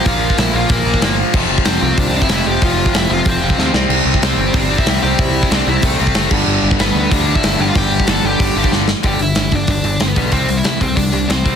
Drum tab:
CC |----------------|x---------------|----------------|x---------------|
HH |o---o---o---o---|----o---o---o---|o---o---o-------|----o---o---o---|
SD |----o-------o---|----o-------o---|----o-------o-o-|----o-------o---|
BD |o--o----o--o----|o--o----o--o----|o--o----o--o----|---o----o--o----|

CC |--------------x-|----------------|----------------|----------------|
HH |o---o---o---o---|----o---o---o---|o---o---o-------|o-o-o-o-o-o-o-o-|
SD |----o-------o---|----o-------o---|----o-------o-o-|----o-------o---|
BD |o--o----o--o--o-|---o----o--o----|o--o----o--o----|o-----o-o-----o-|

CC |----------------|
HH |o-o-o-o-o-o-o-o-|
SD |----o-------o---|
BD |o-----o-o-----o-|